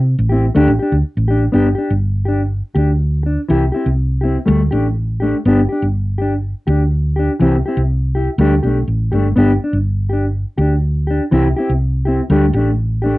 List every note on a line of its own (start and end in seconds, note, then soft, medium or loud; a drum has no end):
0.00 0.14 C3 medium
0.19 0.49 A1 loud
0.29 0.46 C4 soft
0.29 0.46 E4 medium
0.29 0.45 G4 medium
0.55 0.66 D2 loud
0.55 0.70 A3 medium
0.55 0.70 D4 medium
0.55 0.71 G4 medium
0.67 0.77 A1 medium
0.79 0.96 D4 soft
0.79 0.94 G4 medium
0.92 1.02 D2 medium
1.17 1.47 A1 medium
1.28 1.44 D4 soft
1.28 1.43 G4 medium
1.52 1.73 G1 medium
1.52 1.67 B3 medium
1.52 1.68 D4 medium
1.52 1.69 G4 medium
1.75 1.93 D4 soft
1.75 1.91 G4 soft
1.90 2.61 G1 medium
2.25 2.42 D4 soft
2.25 2.41 G4 soft
2.75 3.36 D2 medium
2.75 2.92 D4 soft
2.75 2.90 G4 medium
3.23 3.40 D4 soft
3.23 muted clean electric guitar stroke soft
3.48 3.70 C2 medium
3.48 3.64 E3 medium
3.48 3.64 E4 medium
3.48 3.65 G4 medium
3.48 muted clean electric guitar stroke medium
3.72 3.89 C4 soft
3.72 3.89 E4 medium
3.72 3.88 G4 medium
3.86 4.36 C2 medium
4.21 4.39 C4 soft
4.21 4.38 E4 soft
4.21 4.37 G4 medium
4.46 4.68 D2 loud
4.46 4.61 G3 medium
4.46 4.62 A3 medium
4.46 muted clean electric guitar stroke medium
4.71 5.32 A1 loud
4.71 4.88 A3 soft
4.71 4.87 D4 soft
4.71 4.86 G4 medium
5.20 5.37 A3 soft
5.20 5.36 D4 medium
5.20 5.35 G4 soft
5.45 5.65 G1 medium
5.45 5.60 B3 medium
5.45 5.61 D4 medium
5.45 5.61 G4 medium
5.69 5.86 D4 soft
5.69 5.84 G4 soft
5.82 6.53 G1 medium
6.18 6.35 D4 soft
6.18 6.33 G4 soft
6.67 7.28 D2 medium
6.67 6.84 D4 soft
6.67 6.82 G4 soft
7.16 7.33 D4 soft
7.16 7.31 G4 soft
7.39 7.61 C2 medium
7.39 7.55 E3 medium
7.39 7.56 C4 medium
7.39 7.56 E4 medium
7.39 7.56 G4 medium
7.66 7.82 C4 soft
7.66 7.81 E4 soft
7.66 7.80 G4 medium
7.77 8.27 C2 medium
8.15 8.30 E4 soft
8.15 8.29 G4 soft
8.38 8.58 D2 loud
8.38 8.54 G3 medium
8.38 8.54 A3 medium
8.38 8.55 D4 medium
8.38 8.55 G4 medium
8.63 8.85 B1 medium
8.63 8.80 A3 soft
8.63 8.79 D4 soft
8.63 8.78 G4 medium
8.88 9.09 A1 medium
9.12 9.34 G1 medium
9.12 9.28 A3 soft
9.12 9.28 D4 soft
9.12 9.27 G4 medium
9.36 9.57 G1 medium
9.36 9.51 B3 medium
9.36 9.52 D4 medium
9.36 9.52 G4 medium
9.64 9.77 D4 soft
9.73 10.44 G1 medium
10.10 10.26 D4 soft
10.10 10.25 G4 soft
10.58 11.19 D2 medium
10.58 10.75 D4 soft
10.58 10.73 G4 medium
11.07 11.24 D4 soft
11.07 11.22 G4 soft
11.31 11.52 C2 medium
11.31 11.47 E3 medium
11.31 11.47 C4 medium
11.31 11.48 E4 medium
11.31 11.48 G4 medium
11.57 11.73 C4 soft
11.57 11.72 E4 soft
11.57 11.71 G4 medium
11.70 12.19 C2 medium
12.05 12.22 C4 soft
12.05 12.21 E4 soft
12.05 12.20 G4 soft
12.30 12.50 D2 medium
12.30 12.45 G3 medium
12.30 12.45 A3 medium
12.30 12.46 D4 medium
12.30 12.46 G4 medium
12.53 13.14 A1 loud
12.53 12.70 D4 soft
12.53 12.69 G4 medium
12.58 12.71 A3 soft
13.02 13.18 A3 soft
13.02 13.18 D4 soft
13.02 13.17 G4 medium